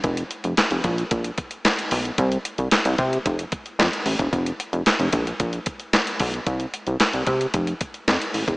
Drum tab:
HH |xxxxxxxxxxxxxxox|xxxxxxxxxxxxxxox|xxxxxxxxxxxxxxox|xxxxxxxxxxxxxxox|
CP |----x-------x---|----x-------x---|----x-------x---|----x-------x---|
SD |----o-------o---|----o-------o---|----o-------o---|----o-------o---|
BD |o-----o-o-o-----|o-----o-o-o----o|o-----o-o-o---o-|o-----o-o-o----o|